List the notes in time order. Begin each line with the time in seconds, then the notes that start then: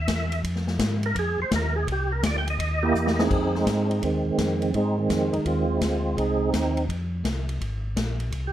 Already playing: E5
0.08 E2, kick, snare, hi-hat pedal, ride
0.32 ride
0.43 F2, kick, ride
0.56 snare
0.67 snare
0.79 G#2, kick, snare, hi-hat pedal, ride
1.03 A#4, ride
1.15 F2 G#4, kick, ride
1.38 F2 C5
1.51 D#2, kick, snare, hi-hat pedal, ride
1.56 A#4
1.76 G#4
1.87 C2, kick, ride
1.92 G4
2.12 A#4
2.23 D2 D5, kick, snare, hi-hat pedal, ride
2.38 G5
2.47 D#5, ride
2.59 D#2, kick, ride
2.83 A#3 E4 G4
2.94 E2, hi-hat pedal
3.07 G4, snare
3.19 C4 D#4 G#4, snare
3.30 F2, kick, crash
3.55 G#3 C4 D#4, snare
3.66 G#2, kick, snare, hi-hat pedal, ride
3.85 D4
3.90 D#4, ride
4.02 D#2 D#3 G#3 C4, kick, ride
4.25 D#2
4.38 F2 C4, kick, snare, hi-hat pedal, ride
4.62 C4, ride
4.74 G#2 G#3 C4 D#4, kick, ride
4.98 D#3 G#3 C4
5.09 F2, kick, snare, hi-hat pedal, ride
5.33 F2 D#4, ride
5.45 D#2 G#3 C4 F4, kick, ride
5.78 D2 E4 F4, kick, snare, hi-hat pedal, ride
5.82 G#3 C4
6.17 C2 C4 D#4 G#4, kick, ride
6.53 D#2, kick, snare, hi-hat pedal, ride
6.77 ride
6.89 F2, kick, ride
7.24 C2, kick, snare, hi-hat pedal, ride
7.49 ride
7.61 G#1, kick, ride
7.96 A#1, kick, snare, hi-hat pedal, ride
8.20 ride
8.32 C2, kick, ride
8.47 G4